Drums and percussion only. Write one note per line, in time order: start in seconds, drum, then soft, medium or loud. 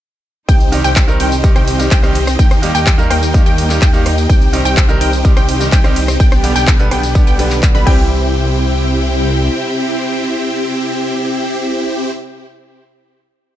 0.49 kick loud
0.49 closed hi-hat medium
0.49 tambourine medium
0.61 closed hi-hat soft
0.61 tambourine soft
0.73 open hi-hat loud
0.84 tambourine medium
0.96 kick loud
0.96 clap loud
0.96 closed hi-hat medium
0.96 tambourine medium
1.08 closed hi-hat soft
1.08 tambourine soft
1.20 open hi-hat loud
1.32 closed hi-hat soft
1.32 tambourine medium
1.44 kick loud
1.44 closed hi-hat medium
1.44 tambourine medium
1.56 cross-stick medium
1.56 closed hi-hat soft
1.56 tambourine soft
1.68 open hi-hat loud
1.80 closed hi-hat soft
1.80 tambourine medium
1.91 kick loud
1.91 clap loud
1.91 closed hi-hat medium
1.91 tambourine medium
2.03 cross-stick medium
2.03 closed hi-hat soft
2.03 tambourine soft
2.15 open hi-hat loud
2.27 cross-stick medium
2.27 closed hi-hat soft
2.27 tambourine medium
2.39 kick loud
2.39 closed hi-hat medium
2.39 tambourine medium
2.51 cross-stick medium
2.51 closed hi-hat soft
2.51 tambourine soft
2.63 open hi-hat loud
2.75 closed hi-hat soft
2.75 tambourine medium
2.87 kick loud
2.87 clap loud
2.87 closed hi-hat medium
2.87 tambourine medium
2.99 closed hi-hat soft
2.99 tambourine soft
3.11 cross-stick medium
3.11 open hi-hat loud
3.23 closed hi-hat soft
3.23 tambourine medium
3.34 kick loud
3.34 closed hi-hat medium
3.34 tambourine medium
3.46 closed hi-hat soft
3.46 tambourine soft
3.58 open hi-hat loud
3.70 clap soft
3.70 closed hi-hat soft
3.70 tambourine medium
3.82 kick loud
3.82 clap loud
3.82 closed hi-hat medium
3.82 tambourine medium
3.94 closed hi-hat soft
3.94 tambourine soft
4.06 cross-stick medium
4.06 open hi-hat loud
4.18 closed hi-hat soft
4.18 tambourine medium
4.30 kick loud
4.30 closed hi-hat medium
4.30 tambourine medium
4.42 closed hi-hat soft
4.42 tambourine soft
4.53 open hi-hat loud
4.65 closed hi-hat soft
4.65 tambourine medium
4.77 kick loud
4.77 clap loud
4.77 closed hi-hat medium
4.77 tambourine medium
4.89 closed hi-hat soft
4.89 tambourine soft
5.01 open hi-hat loud
5.13 closed hi-hat soft
5.13 tambourine medium
5.25 kick loud
5.25 closed hi-hat medium
5.25 tambourine medium
5.37 cross-stick medium
5.37 closed hi-hat soft
5.37 tambourine soft
5.49 open hi-hat loud
5.61 closed hi-hat soft
5.61 tambourine medium
5.72 kick loud
5.72 clap loud
5.72 closed hi-hat medium
5.72 tambourine medium
5.84 cross-stick medium
5.84 closed hi-hat soft
5.84 tambourine soft
5.96 open hi-hat loud
6.08 cross-stick medium
6.08 closed hi-hat soft
6.08 tambourine medium
6.20 kick loud
6.20 closed hi-hat medium
6.20 tambourine medium
6.32 cross-stick medium
6.32 closed hi-hat soft
6.32 tambourine soft
6.44 open hi-hat loud
6.56 tambourine medium
6.67 kick loud
6.67 clap loud
6.67 closed hi-hat medium
6.67 tambourine medium
6.79 closed hi-hat soft
6.79 tambourine soft
6.91 cross-stick medium
6.91 open hi-hat loud
7.03 closed hi-hat soft
7.03 tambourine medium
7.15 kick loud
7.15 closed hi-hat medium
7.15 tambourine medium
7.27 closed hi-hat soft
7.27 tambourine soft
7.39 open hi-hat loud
7.51 clap soft
7.51 tambourine medium
7.63 kick loud
7.63 clap loud
7.63 closed hi-hat medium
7.63 tambourine medium
7.75 closed hi-hat soft
7.75 tambourine soft
7.87 kick loud
7.87 crash medium